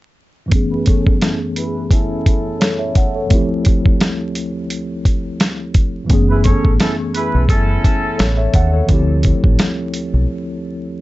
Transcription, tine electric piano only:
0.46 2.89 F#2 medium
0.46 2.90 E3 medium
0.46 2.91 A3 medium
0.52 2.92 B3 medium
0.52 2.93 C#4 medium
0.52 2.59 G#4 medium
2.60 2.79 A4 medium
2.60 2.79 C#5 medium
2.79 2.95 C#5 medium
2.79 2.94 E5 medium
2.97 3.15 F#5 medium
3.15 3.49 A4 medium
3.15 3.48 C#5 medium
3.26 6.04 D2 medium
3.26 3.37 E3 medium
3.26 6.05 A3 medium
3.32 6.08 F3 medium
3.32 6.06 C4 medium
3.32 6.07 E4 medium
3.32 6.08 G4 medium
6.04 8.47 F#2 medium
6.04 8.48 E3 medium
6.04 8.49 A3 medium
6.10 8.50 B3 medium
6.10 8.51 C#4 medium
6.10 8.17 G#4 medium
8.18 8.37 A4 medium
8.18 8.37 C#5 medium
8.37 8.53 C#5 medium
8.37 8.53 E5 medium
8.55 8.73 F#5 medium
8.73 9.07 A4 medium
8.73 9.07 C#5 medium
8.84 11.01 D2 medium
8.84 8.95 E3 medium
8.84 11.01 A3 medium
8.90 11.01 F3 medium
8.90 11.01 C4 medium
8.90 11.01 E4 medium
8.90 11.01 G4 medium

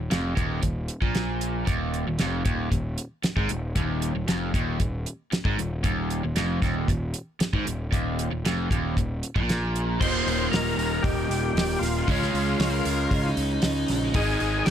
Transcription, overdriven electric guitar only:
0.00 0.10 D#2 medium
0.11 0.36 F2 medium
0.36 0.62 D#2 medium
0.63 0.84 D#2 medium
1.02 1.67 A#2 medium
1.66 2.05 D#2 medium
2.08 2.20 D#2 medium
2.20 2.45 F2 medium
2.45 2.70 D#2 medium
2.72 2.93 D#2 medium
3.24 muted overdriven electric guitar stroke soft
3.37 3.49 G#2 medium
3.50 3.71 D#2 medium
3.76 4.14 D#2 medium
4.16 4.28 D#2 medium
4.28 4.54 F2 loud
4.54 4.79 D#2 medium
4.80 5.01 D#2 medium
5.32 muted overdriven electric guitar stroke medium
5.45 5.58 G#2 medium
5.58 5.79 D#2 medium
5.84 6.22 D#2 medium
6.25 6.36 D#2 medium
6.37 6.62 F2 loud
6.63 6.88 D#2 medium
6.90 7.10 D#2 medium
7.55 7.66 G#2 medium
7.67 7.88 D#2 medium
7.92 8.30 D#2 medium
8.31 8.44 D#2 medium
8.45 8.70 F2 medium
8.71 8.96 D#2 medium
8.98 9.18 D#2 medium
9.36 10.00 A#2 medium
10.00 12.06 D#2 medium
10.00 12.07 A#2 medium
10.00 12.07 D#3 medium
12.08 14.13 C#3 medium
12.08 14.14 G#3 medium
12.08 14.15 C#4 medium
14.15 14.70 G#2 medium
14.15 14.70 D#3 medium
14.15 14.70 G#3 medium

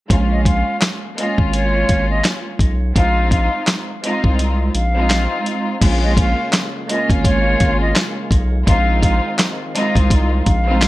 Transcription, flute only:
0.31 0.44 D#5 medium
0.46 0.78 F5 medium
1.17 1.36 D#5 medium
1.53 2.07 C#5 medium
2.10 2.23 D#5 medium
2.96 3.28 F5 loud
3.32 3.64 F5 medium
4.03 4.22 D#5 medium
4.74 5.77 F5 medium
6.03 6.16 D#5 medium
6.18 6.50 F5 medium
6.88 7.08 D#5 medium
7.24 7.78 C#5 medium
7.81 7.94 D#5 medium
8.68 9.00 F5 loud
9.03 9.35 F5 medium
9.75 9.94 D#5 medium
10.45 10.88 F5 medium

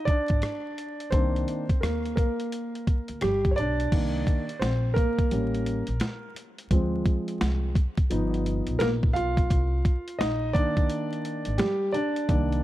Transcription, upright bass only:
0.30 0.41 G#1 medium
1.12 1.43 C2 loud
1.82 2.12 D#2 medium
3.09 3.20 D2 medium
3.22 3.52 G1 medium
3.57 3.87 B1 medium
3.92 4.22 C2 medium
4.61 4.92 A#1 loud
5.31 5.81 A1 loud
5.88 5.99 A#1 medium
6.71 7.01 D2 medium
7.41 7.71 C2 medium
8.11 8.60 G1 loud
8.68 8.79 A#1 medium
8.81 9.11 A#1 medium
9.15 9.45 B1 medium
9.50 9.80 C2 loud
10.20 10.50 A#1 medium
11.46 11.57 G#1 medium
12.29 12.59 C2 loud

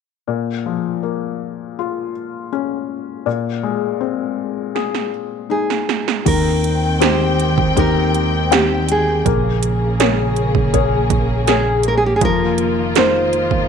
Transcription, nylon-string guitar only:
5.51 6.27 G#4 medium
6.28 6.98 A#4 medium
7.03 7.79 C5 medium
7.79 8.54 A#4 medium
8.54 8.87 G4 medium
8.92 10.34 G#4 medium
11.49 11.87 G#4 medium
11.88 11.96 A#4 medium
11.97 12.05 G#4 medium
12.06 12.14 G4 medium
12.16 12.23 G#4 medium
12.25 12.98 A#4 loud
12.98 13.68 C5 medium

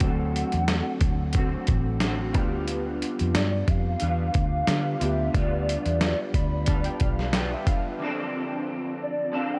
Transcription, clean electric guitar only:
0.00 1.33 D3 medium
0.00 1.34 A3 medium
0.00 1.35 C4 medium
0.00 1.36 F#4 medium
0.00 0.18 A4 medium
1.34 2.00 D3 medium
1.34 2.01 A3 medium
1.34 2.02 C4 medium
1.34 2.03 F#4 medium
2.01 2.35 D3 medium
2.01 2.35 A3 medium
2.01 2.35 C4 medium
2.01 2.33 F#4 medium
2.33 4.01 B3 medium
2.33 4.03 F4 medium
2.37 3.99 D3 medium
2.37 4.00 G3 medium
4.00 4.66 D3 medium
4.00 4.67 G3 medium
4.00 4.68 B3 medium
4.04 4.70 F4 medium
4.67 5.33 D3 medium
4.67 5.34 G3 medium
4.67 5.35 B3 medium
4.67 5.38 F4 medium
5.33 6.67 D3 medium
5.33 6.67 G3 medium
5.33 6.69 B3 medium
5.38 6.70 F4 medium
6.67 7.32 D3 medium
6.67 7.34 G3 medium
6.67 7.34 B3 medium
6.67 7.37 F4 medium
7.33 7.98 D3 medium
7.33 8.00 G3 medium
7.33 8.01 B3 medium
7.37 8.03 F4 medium
7.99 9.31 D3 medium
7.99 9.32 F3 loud
7.99 9.33 C4 loud
8.03 9.33 D4 loud
8.03 9.34 A4 loud
9.32 9.59 D3 medium
9.32 9.59 F3 medium
9.32 9.59 C4 medium
9.32 9.59 D4 medium
9.32 9.59 A4 medium

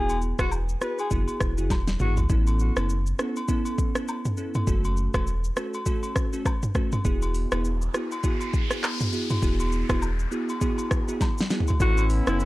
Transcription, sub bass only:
0.00 0.33 E1 loud
0.39 0.75 E1 medium
1.11 1.26 F#1 loud
1.41 1.56 E1 loud
1.58 1.69 F#1 medium
1.70 1.96 E1 medium
2.00 2.26 G#1 medium
2.30 2.70 A1 loud
2.77 3.13 F#1 medium
4.67 5.08 F#1 loud
5.14 5.51 E1 loud
7.05 7.45 E1 loud
7.52 7.88 E1 medium
9.42 9.83 E1 loud
9.89 10.26 E1 medium
11.80 12.21 A1 loud
12.27 12.45 F#1 medium

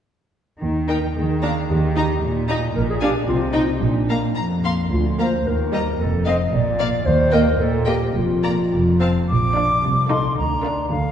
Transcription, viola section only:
0.89 0.97 D#4 soft
1.43 1.51 D4 soft
1.96 2.04 D#4 soft
2.49 2.57 D#4 soft
3.01 3.09 D4 soft
3.54 3.62 D#4 soft
4.08 4.16 A#3 soft
4.64 4.72 A#3 soft
5.19 5.27 A#3 soft
5.73 5.81 G3 soft
6.26 6.34 C4 soft
6.79 6.88 A#3 soft
7.33 7.41 A#3 soft
7.86 7.94 A#3 soft
8.43 8.51 A#3 soft
9.00 9.08 C4 soft
9.56 9.76 D4 soft
10.11 10.31 D#4 soft
10.65 10.85 D4 soft

